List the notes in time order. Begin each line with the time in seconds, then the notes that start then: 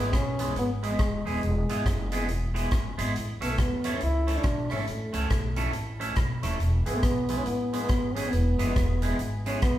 Already playing: G#1 B3
0.13 B1 C#4, kick, cross-stick, closed hi-hat
0.39 G#3 B3 E4 G#4, closed hi-hat
0.56 G#1 B3, muted clean electric guitar stroke, closed hi-hat
0.83 G#3 B3 E4 G#4, closed hi-hat
0.99 E1, kick, cross-stick, closed hi-hat
1.26 D#1 G#3 B3 E4 G#4, open hi-hat
1.43 E1, closed hi-hat
1.69 G#1 G#3 B3 E4 G#4, closed hi-hat
1.86 F#1, kick, cross-stick, closed hi-hat
2.12 G#3 B3 E4 G#4, closed hi-hat
2.28 E1, muted clean electric guitar stroke, closed hi-hat
2.54 G#3 B3 E4 G#4, closed hi-hat
2.71 F#1, kick, cross-stick, closed hi-hat
2.98 G#1 G#3 B3 E4 G#4, closed hi-hat
3.16 A1, closed hi-hat
3.41 B1 A3 B3 C#4 E4 A4, closed hi-hat
3.51 A3
3.58 D2 B3, kick, cross-stick, closed hi-hat
3.84 A3 C#4 E4 A4, closed hi-hat
3.94 C#4
4.00 C#2 E4, muted clean electric guitar stroke, closed hi-hat
4.27 A3 C#4 E4 A4, closed hi-hat
4.38 D4
4.43 B1, kick, cross-stick, closed hi-hat
4.70 G#1 A3 C#4 E4 A4, cross-stick, open hi-hat
4.87 A1 A3, closed hi-hat
5.13 C#2 A3 C#4 E4 A4, closed hi-hat
5.30 B1, kick, cross-stick, closed hi-hat
5.56 A3 C#4 E4 A4, closed hi-hat
5.73 A1, muted clean electric guitar stroke, closed hi-hat
6.00 A3 C#4 E4 A4, closed hi-hat
6.16 B1, kick, cross-stick, closed hi-hat
6.43 D#1 A3 C#4 E4 A4, closed hi-hat
6.60 E1, closed hi-hat
6.86 G#1 G#3 B3 E4 G#4, closed hi-hat
6.96 A3
7.03 B1 B3, kick, cross-stick, closed hi-hat
7.29 G#3 B3 E4 G#4, closed hi-hat
7.37 C#4
7.45 A1 B3, muted clean electric guitar stroke, closed hi-hat
7.73 G#3 B3 E4 G#4, closed hi-hat
7.81 B3
7.89 G#1, kick, cross-stick, closed hi-hat
8.15 G#3 B3 C#4 E4 G#4, closed hi-hat
8.31 E1 B3, closed hi-hat
8.59 F#1 G#3 B3 E4 G#4, closed hi-hat
8.76 E1, kick, cross-stick, closed hi-hat
9.02 G#3 B3 E4 G#4, closed hi-hat
9.19 G#1, muted clean electric guitar stroke, closed hi-hat
9.46 G#3 B3 C#4 E4 G#4, closed hi-hat
9.62 B1 B3, kick, cross-stick, closed hi-hat